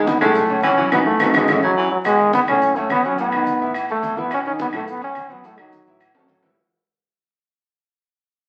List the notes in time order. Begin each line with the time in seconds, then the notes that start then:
Already playing: E1 D#3 D#4 D#5
0.07 B3, high conga, low agogo, maracas
0.21 F#1 A2 G#3 A3 A4, high conga, low conga, low agogo, claves, maracas
0.35 high conga, low conga, maracas
0.49 C#3 C#4 C#5, high conga, low agogo, maracas
0.63 B1 E3 C#4, high conga, low agogo, claves, maracas
0.77 E3 F#3 F#4 F#5, high conga, maracas
0.92 B1 B3 D#4 F#4, high conga, high timbale, claves, maracas
1.07 A3
1.20 B1 B3 D#4 F#4, high conga, high timbale, claves, maracas
1.34 B1 G#3 B3 D#4 F#4, high conga, high timbale, claves, maracas
1.48 A1 A3 C#4 E4, high conga, high timbale, claves, maracas
1.63 C#3 F#3
1.77 E3
1.92 F#3
2.05 E1 B2 G#3 B3 B4, high conga, low agogo, claves, maracas
2.19 D#3 D#4 D#5, high conga, maracas
2.33 B3, high conga, low agogo, maracas
2.46 F#1 A2 A3 C#4 A4, high conga, low conga, low agogo, claves, maracas
2.62 high conga, maracas
2.76 C#3 A3 C#4 C#5, high conga, low agogo, maracas
2.90 B1 B3, high conga, low agogo, claves, maracas
3.04 F#3 C#4 F#4 F#5, maracas
3.18 A2 A3 B3 A4, high conga, low agogo, maracas
3.32 D#3 D#4 D#5, high conga, low agogo, claves, maracas
3.46 high conga, maracas
3.60 A1 E3 E4 E5, high conga, maracas
3.74 high conga, low agogo, claves, maracas
3.88 F#1 A3 A4 A5, high conga, maracas
4.03 E1, high conga, low agogo, maracas
4.17 E3 B3 E4 E5, high conga, maracas
4.31 B2 B3 C#4 B4, high conga, low agogo, claves, maracas
4.45 D#3 C#4 D#4 D#5, high conga, maracas
4.59 B3, high conga, low agogo, maracas
4.73 F#1 A2 A3 A4, high conga, low conga, low agogo, claves, maracas
4.88 B3, high conga, maracas
5.01 C#3 C#4 C#5, high conga, low agogo, maracas
5.15 B1, high conga, low agogo, claves, maracas
5.30 F#3 B3 F#4 F#5, high conga, maracas
5.44 A2 A3 A4, high conga, low agogo, maracas
5.58 D#3 F#3 D#4 D#5, high conga, low agogo, claves
5.72 high conga, maracas
5.86 A1 E3 E4 E5, high conga
6.00 high conga, low agogo, claves, maracas
6.15 G#1 F#3 A3 A4 A5, high conga, high timbale
6.28 A1, high conga, low agogo, maracas
6.43 E3 E4 E5, high conga, low timbale